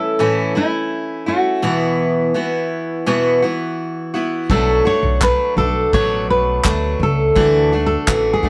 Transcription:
Already playing: steel-string acoustic guitar E3 A3 C#4 E4, nylon-string guitar A4
0.19 steel-string acoustic guitar A2 E3 A3 C#4 E4
0.55 steel-string acoustic guitar A3 C#4 E4, nylon-string guitar E4
1.26 steel-string acoustic guitar A3 C#4 E4, nylon-string guitar F#4
1.62 steel-string acoustic guitar E2 B2 E3 B3 E4 F#4
2.34 steel-string acoustic guitar E3 B3 E4 F#4
3.06 steel-string acoustic guitar E2 B2 E3 B3 E4 F#4
3.42 steel-string acoustic guitar E3 B3 E4 F#4
4.14 steel-string acoustic guitar E3 B3 E4 F#4
4.50 upright bass B1, steel-string acoustic guitar B2 F#3 A3 D4 F#4, nylon-string guitar A4, kick
4.85 steel-string acoustic guitar A3 D4 F#4, nylon-string guitar C#5
5.03 upright bass B1
5.21 steel-string acoustic guitar F#3 A3 D4 F#4, nylon-string guitar B4, kick, clap
5.57 upright bass B1, steel-string acoustic guitar A3 D4 F#4, nylon-string guitar A4
5.93 upright bass A1, steel-string acoustic guitar B2 F#3 A3 D4 F#4, nylon-string guitar C#5, kick
6.29 upright bass B1, nylon-string guitar B4
6.64 upright bass D2, steel-string acoustic guitar F#3 A3 D4 F#4, kick, clap
7.00 upright bass C#2, nylon-string guitar A4
7.35 upright bass D2, steel-string acoustic guitar D3 E3 A3 D4 F#4, kick
7.72 steel-string acoustic guitar A3 D4 F#4
7.87 nylon-string guitar A4
8.08 upright bass A1, steel-string acoustic guitar E3 A3 D4 F#4, kick, clap
8.34 nylon-string guitar G#4
8.43 upright bass B1, steel-string acoustic guitar A3 D4 F#4

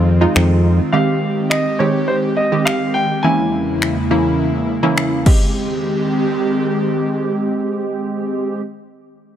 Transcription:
Already playing: picked electric bass F2, analog synth pad D#3 G#3 C4 F4, analog polysynth F4, grand piano C5
0.21 analog polysynth G#3 D#4 F4
0.36 picked electric bass F2, finger snap
0.92 analog polysynth D#3 G#3 C4 G4, analog synth pad G#3 G4, grand piano F5
1.50 grand piano D#5, finger snap
1.79 analog polysynth D#3 G#3 C4 G4, grand piano C#5
2.08 grand piano C5
2.37 grand piano D#5
2.52 analog polysynth D#3 G#3 C4 G4
2.65 grand piano F5, finger snap
2.94 grand piano G5
3.23 analog synth pad E2 C#3 A#3 E4, analog polysynth E3 A#3 C#4 E4, grand piano G#5
3.82 finger snap
4.11 analog polysynth E3 A#3 C#4 E4
4.83 analog polysynth E3 A#3 C#4 E4
4.98 finger snap
5.26 analog synth pad D#3 G#3 C4 G4, analog polysynth G#3 C4 G4, kick, crash

